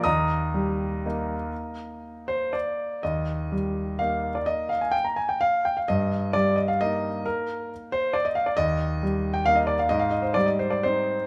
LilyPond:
<<
  \new Staff \with { instrumentName = "Grand piano" } { \time 3/4 \key ees \major \tempo 4 = 127 << { <ees'' bes''>2.~ | <ees'' bes''>2 r4 | r2. | r2. |
r2. | r2. | r2. | r2. | } \\ { ees'''2.~ | ees'''4. c''8 d''4 | ees''2 f''8. d''16 | ees''8 f''16 aes''16 g''16 bes''16 aes''16 g''16 f''8 g''16 f''16 |
ees''4 d''8 ees''16 f''16 ees''4 | bes'4 r8 c''8 d''16 ees''16 f''16 d''16 | ees''4.~ ees''16 g''16 f''16 ees''16 d''16 f''16 | ees''16 f''16 ees''16 c''16 d''16 ees''16 c''16 d''16 c''4 | } >> }
  \new Staff \with { instrumentName = "Grand piano" } { \clef bass \time 3/4 \key ees \major ees,4 g4 <bes ees'>4~ | <bes ees'>2. | ees,4 g4 <bes ees'>4~ | <bes ees'>2. |
g,4 g4 <bes ees'>4~ | <bes ees'>2. | ees,4 g4 <bes ees'>4 | aes,4 g4 <c' ees'>4 | }
>>